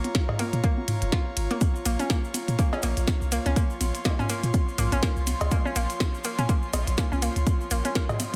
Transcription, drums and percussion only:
0.04 closed hi-hat soft
0.04 high conga soft
0.15 kick loud
0.15 snare medium
0.15 closed hi-hat soft
0.29 mid tom medium
0.29 cowbell medium
0.39 closed hi-hat medium
0.39 ride medium
0.39 high conga soft
0.53 closed hi-hat soft
0.64 kick loud
0.64 closed hi-hat medium
0.78 high conga soft
0.88 closed hi-hat medium
0.88 mid tom medium
0.88 ride medium
1.02 closed hi-hat soft
1.12 kick loud
1.12 snare medium
1.12 closed hi-hat soft
1.12 high conga soft
1.37 closed hi-hat medium
1.37 ride medium
1.51 closed hi-hat soft
1.51 high conga soft
1.61 kick loud
1.61 closed hi-hat medium
1.61 high conga soft
1.61 maracas medium
1.75 maracas soft
1.86 closed hi-hat medium
1.86 ride medium
1.86 maracas loud
1.99 closed hi-hat soft
1.99 high conga soft
1.99 maracas soft
2.10 kick loud
2.10 snare medium
2.10 closed hi-hat medium
2.10 maracas medium
2.24 maracas soft
2.34 closed hi-hat medium
2.34 ride medium
2.34 high conga soft
2.34 maracas medium
2.48 closed hi-hat soft
2.48 maracas soft
2.59 kick loud
2.59 closed hi-hat soft
2.59 maracas medium
2.73 cowbell medium
2.73 high conga soft
2.73 maracas soft
2.82 closed hi-hat medium
2.82 ride medium
2.82 maracas medium
2.97 closed hi-hat soft
2.97 maracas soft
3.07 kick loud
3.07 snare medium
3.07 closed hi-hat medium
3.07 high conga soft
3.07 maracas medium
3.22 maracas soft
3.32 closed hi-hat medium
3.32 ride medium
3.32 maracas medium
3.46 closed hi-hat soft
3.46 high conga soft
3.46 maracas soft
3.56 kick loud
3.56 closed hi-hat medium
3.56 maracas medium
3.70 maracas soft
3.81 closed hi-hat medium
3.81 ride medium
3.81 high conga soft
3.81 maracas medium
3.95 closed hi-hat soft
3.95 maracas soft
4.05 kick loud
4.05 snare medium
4.05 closed hi-hat medium
4.05 cowbell medium
4.05 maracas soft
4.19 mid tom medium
4.19 high conga soft
4.19 maracas soft
4.29 closed hi-hat medium
4.29 ride medium
4.29 maracas medium
4.43 closed hi-hat soft
4.43 maracas soft
4.54 kick loud
4.54 closed hi-hat soft
4.54 high conga soft
4.54 maracas soft
4.68 maracas soft
4.78 closed hi-hat medium
4.78 mid tom medium
4.78 ride medium
4.78 maracas loud
4.92 closed hi-hat soft
4.92 high conga soft
4.92 maracas soft
5.03 kick loud
5.03 snare medium
5.03 closed hi-hat medium
5.03 maracas medium
5.16 maracas soft
5.27 closed hi-hat medium
5.27 ride medium
5.27 high conga soft
5.27 maracas medium
5.41 closed hi-hat soft
5.41 cowbell medium
5.41 maracas soft
5.51 kick loud
5.51 closed hi-hat medium
5.51 maracas medium
5.65 high conga soft
5.65 maracas soft
5.76 closed hi-hat medium
5.76 ride medium
5.76 maracas medium
5.90 closed hi-hat soft
5.90 maracas soft
6.00 kick loud
6.00 snare medium
6.00 closed hi-hat medium
6.00 high conga soft
6.00 maracas soft
6.14 maracas soft
6.24 closed hi-hat medium
6.24 ride medium
6.24 maracas medium
6.38 closed hi-hat soft
6.38 high conga soft
6.38 maracas soft
6.49 kick loud
6.49 closed hi-hat medium
6.49 maracas medium
6.62 maracas soft
6.73 closed hi-hat medium
6.73 ride medium
6.73 cowbell medium
6.73 high conga soft
6.73 maracas medium
6.87 closed hi-hat medium
6.87 maracas soft
6.98 kick loud
6.98 snare medium
6.98 closed hi-hat medium
6.98 maracas medium
7.12 high conga soft
7.12 maracas soft
7.22 closed hi-hat medium
7.22 ride medium
7.22 maracas medium
7.36 closed hi-hat soft
7.36 maracas soft
7.47 kick loud
7.47 closed hi-hat medium
7.47 high conga soft
7.47 maracas medium
7.61 maracas soft
7.71 closed hi-hat medium
7.71 ride medium
7.71 maracas loud
7.85 closed hi-hat soft
7.85 high conga soft
7.85 maracas soft
7.95 kick loud
7.95 snare medium
7.95 closed hi-hat medium
7.95 maracas soft
8.09 mid tom medium
8.09 cowbell medium
8.09 maracas soft
8.20 closed hi-hat medium
8.20 ride medium
8.20 high conga soft
8.20 maracas medium

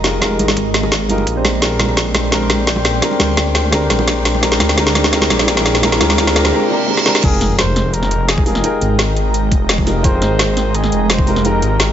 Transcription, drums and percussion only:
0.04 snare medium
0.04 open hi-hat medium
0.22 kick medium
0.22 snare medium
0.22 closed hi-hat medium
0.22 muted conga medium
0.39 closed hi-hat medium
0.39 high conga medium
0.48 snare medium
0.57 kick loud
0.57 closed hi-hat medium
0.57 muted conga medium
0.74 snare medium
0.74 closed hi-hat medium
0.83 muted conga medium
0.92 kick loud
0.92 snare medium
0.92 closed hi-hat medium
1.09 closed hi-hat medium
1.09 high conga medium
1.18 muted conga medium
1.27 kick loud
1.27 closed hi-hat medium
1.45 snare medium
1.45 open hi-hat medium
1.45 muted conga medium
1.62 kick medium
1.62 snare medium
1.62 closed hi-hat medium
1.79 snare medium
1.79 closed hi-hat loud
1.79 high conga medium
1.89 muted conga medium
1.97 kick loud
1.97 snare medium
1.97 closed hi-hat medium
2.15 snare medium
2.15 closed hi-hat medium
2.15 muted conga medium
2.32 kick medium
2.32 snare medium
2.32 closed hi-hat medium
2.50 snare medium
2.50 closed hi-hat medium
2.50 muted conga medium
2.50 high conga medium
2.67 kick loud
2.67 snare medium
2.67 closed hi-hat medium
2.76 muted conga medium
2.85 snare medium
2.85 open hi-hat medium
3.02 kick medium
3.02 snare medium
3.02 closed hi-hat medium
3.11 muted conga medium
3.19 snare medium
3.19 closed hi-hat loud
3.19 high conga medium
3.37 kick loud
3.37 snare medium
3.37 closed hi-hat medium
3.37 muted conga medium
3.55 snare medium
3.55 closed hi-hat loud
3.72 kick loud
3.72 snare medium
3.72 closed hi-hat medium
3.72 muted conga medium
3.90 snare medium
3.90 closed hi-hat loud
3.90 high conga medium
3.99 muted conga medium
4.08 kick medium
4.08 snare medium
4.08 closed hi-hat medium
4.25 snare medium
4.25 open hi-hat medium
4.35 muted conga medium
4.43 kick loud
4.43 snare loud
4.43 closed hi-hat medium
4.52 snare medium
4.60 snare loud
4.60 closed hi-hat loud
4.60 muted conga medium
4.60 high conga loud
4.69 snare medium
4.78 kick loud
4.78 snare medium
4.78 closed hi-hat medium
4.87 snare medium
4.95 snare loud
4.95 closed hi-hat loud
4.95 muted conga medium
5.04 snare medium
5.13 kick medium
5.13 snare loud
5.13 closed hi-hat medium
5.21 snare medium
5.21 muted conga medium
5.30 snare loud
5.30 closed hi-hat loud
5.30 high conga medium
5.39 snare medium
5.48 kick loud
5.48 snare medium
5.48 closed hi-hat medium
5.57 snare medium
5.57 muted conga medium
5.66 snare loud
5.66 open hi-hat medium
5.75 snare medium
5.83 kick loud
5.83 snare loud
5.83 closed hi-hat medium
5.83 muted conga medium
5.92 snare medium
6.01 snare loud
6.01 closed hi-hat loud
6.01 high conga medium
6.10 snare loud
6.18 kick loud
6.18 snare loud
6.18 closed hi-hat medium
6.18 muted conga soft
6.27 snare medium
6.36 snare loud
6.36 closed hi-hat loud
6.45 snare medium
6.45 muted conga medium
6.97 snare medium
7.06 snare medium
7.15 snare medium
7.23 kick loud
7.23 closed hi-hat loud
7.23 crash loud
7.41 snare medium
7.41 closed hi-hat medium
7.59 snare loud
7.59 closed hi-hat medium
7.76 snare medium
7.76 closed hi-hat medium
7.94 closed hi-hat medium
8.03 snare soft
8.11 closed hi-hat medium
8.29 snare loud
8.29 closed hi-hat medium
8.38 kick loud
8.46 open hi-hat medium
8.55 snare medium
8.64 closed hi-hat loud
8.81 closed hi-hat medium
8.99 snare loud
8.99 closed hi-hat loud
9.17 closed hi-hat medium
9.34 closed hi-hat loud
9.52 kick loud
9.52 closed hi-hat medium
9.69 snare loud
9.69 closed hi-hat medium
9.78 kick medium
9.87 snare soft
9.87 open hi-hat medium
10.04 kick loud
10.04 closed hi-hat medium
10.22 snare medium
10.22 closed hi-hat medium
10.39 snare loud
10.39 closed hi-hat medium
10.57 snare medium
10.57 closed hi-hat medium
10.74 closed hi-hat medium
10.84 snare medium
10.92 closed hi-hat medium
11.10 snare loud
11.10 closed hi-hat medium
11.19 kick loud
11.27 open hi-hat medium
11.36 snare medium
11.45 closed hi-hat medium
11.62 closed hi-hat medium
11.80 snare loud
11.80 closed hi-hat medium

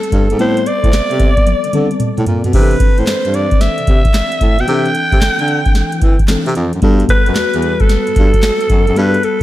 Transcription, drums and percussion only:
0.03 closed hi-hat medium
0.12 kick medium
0.12 closed hi-hat medium
0.30 closed hi-hat soft
0.39 closed hi-hat medium
0.57 closed hi-hat soft
0.66 closed hi-hat medium
0.84 kick medium
0.84 closed hi-hat medium
0.93 snare loud
0.93 clap medium
0.93 closed hi-hat medium
1.11 closed hi-hat medium
1.20 kick medium
1.20 closed hi-hat medium
1.37 kick medium
1.37 closed hi-hat soft
1.46 closed hi-hat medium
1.46 high tom medium
1.64 closed hi-hat medium
1.73 closed hi-hat medium
1.73 mid tom medium
1.91 closed hi-hat medium
2.00 closed hi-hat medium
2.00 mid tom medium
2.18 closed hi-hat soft
2.18 mid tom medium
2.26 closed hi-hat medium
2.26 floor tom medium
2.44 closed hi-hat medium
2.44 floor tom medium
2.53 kick loud
2.53 crash medium
2.71 closed hi-hat soft
2.80 kick loud
2.80 closed hi-hat medium
2.98 closed hi-hat soft
3.07 snare loud
3.07 clap medium
3.07 closed hi-hat medium
3.25 closed hi-hat medium
3.34 closed hi-hat medium
3.51 kick medium
3.51 closed hi-hat soft
3.61 snare medium
3.61 closed hi-hat medium
3.78 closed hi-hat medium
3.87 kick loud
3.87 closed hi-hat medium
4.05 kick medium
4.05 closed hi-hat soft
4.14 snare loud
4.14 clap medium
4.14 closed hi-hat medium
4.32 closed hi-hat medium
4.41 kick medium
4.41 closed hi-hat medium
4.59 closed hi-hat soft
4.68 closed hi-hat medium
4.86 closed hi-hat soft
4.95 closed hi-hat medium
5.12 kick medium
5.12 closed hi-hat medium
5.21 snare loud
5.21 clap medium
5.21 closed hi-hat medium
5.39 closed hi-hat medium
5.48 closed hi-hat medium
5.66 kick medium
5.66 closed hi-hat soft
5.75 snare medium
5.75 closed hi-hat medium
5.92 closed hi-hat medium
6.02 kick loud
6.02 closed hi-hat medium
6.19 kick medium
6.19 closed hi-hat soft
6.28 snare loud
6.28 clap medium
6.28 closed hi-hat medium
6.46 closed hi-hat soft
6.55 closed hi-hat medium
6.73 closed hi-hat soft
6.82 kick medium
6.82 closed hi-hat medium
7.00 closed hi-hat soft
7.09 kick loud
7.09 closed hi-hat medium
7.26 closed hi-hat soft
7.35 snare loud
7.35 clap medium
7.35 closed hi-hat medium
7.54 closed hi-hat soft
7.62 closed hi-hat medium
7.80 kick loud
7.80 closed hi-hat medium
7.89 snare medium
7.89 closed hi-hat medium
8.07 closed hi-hat soft
8.16 kick loud
8.16 closed hi-hat medium
8.34 kick medium
8.34 closed hi-hat medium
8.43 snare loud
8.43 clap medium
8.43 closed hi-hat medium
8.61 closed hi-hat medium
8.70 kick medium
8.70 closed hi-hat medium
8.87 closed hi-hat soft
8.96 closed hi-hat medium
9.14 closed hi-hat soft
9.23 closed hi-hat medium

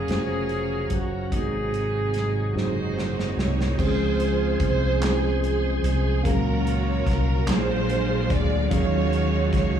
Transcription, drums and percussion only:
0.08 snare medium
0.08 closed hi-hat medium
0.49 closed hi-hat soft
0.90 kick medium
0.90 closed hi-hat medium
1.32 kick medium
1.32 closed hi-hat medium
1.74 closed hi-hat soft
2.14 snare soft
2.14 closed hi-hat medium
2.58 snare soft
2.99 snare medium
3.19 snare medium
3.39 snare medium
3.61 snare medium
3.79 kick medium
3.79 crash medium
4.20 closed hi-hat soft
4.60 kick medium
4.60 closed hi-hat medium
5.02 snare medium
5.02 clap medium
5.02 closed hi-hat medium
5.44 closed hi-hat soft
5.84 closed hi-hat medium
6.25 kick medium
6.25 closed hi-hat medium
6.67 closed hi-hat medium
7.07 kick medium
7.07 snare soft
7.07 closed hi-hat medium
7.48 snare loud
7.48 clap medium
7.48 closed hi-hat medium
7.90 closed hi-hat soft
8.30 kick medium
8.30 closed hi-hat medium
8.71 kick medium
8.71 closed hi-hat medium
9.13 closed hi-hat soft
9.53 kick medium
9.53 snare soft
9.53 closed hi-hat medium

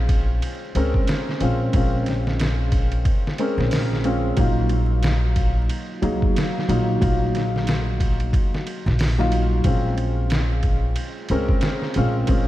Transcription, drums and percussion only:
0.09 kick medium
0.09 ride medium
0.42 ride medium
0.75 ride medium
0.94 kick medium
1.07 snare medium
1.07 ride medium
1.29 snare soft
1.41 ride medium
1.73 kick medium
1.73 ride medium
2.06 snare soft
2.06 ride medium
2.27 snare soft
2.39 snare loud
2.39 ride medium
2.72 kick medium
2.72 ride medium
2.92 ride soft
3.05 kick loud
3.05 ride medium
3.27 snare soft
3.38 ride medium
3.60 snare soft
3.71 snare medium
3.71 open hi-hat medium
3.93 snare soft
4.04 ride medium
4.37 kick loud
4.37 ride medium
4.69 ride medium
5.03 snare loud
5.03 ride medium
5.36 kick medium
5.36 ride medium
5.69 ride medium
6.03 ride medium
6.22 kick medium
6.36 snare loud
6.36 ride medium
6.58 snare soft
6.69 ride medium
7.02 kick loud
7.02 ride medium
7.35 snare soft
7.35 ride medium
7.56 snare soft
7.67 snare loud
7.67 ride medium
8.00 kick medium
8.00 ride medium
8.20 ride soft
8.33 kick loud
8.33 ride medium
8.55 snare soft
8.67 ride medium
8.88 snare soft
8.99 snare loud
8.99 open hi-hat medium
9.21 snare soft
9.32 ride medium
9.64 kick medium
9.64 ride medium
9.98 ride medium
10.30 snare loud
10.30 ride medium
10.63 kick medium
10.63 ride medium
10.96 ride medium
11.29 ride medium
11.49 kick medium
11.61 snare loud
11.61 ride medium
11.82 snare soft
11.94 ride medium
12.27 kick loud
12.27 ride medium

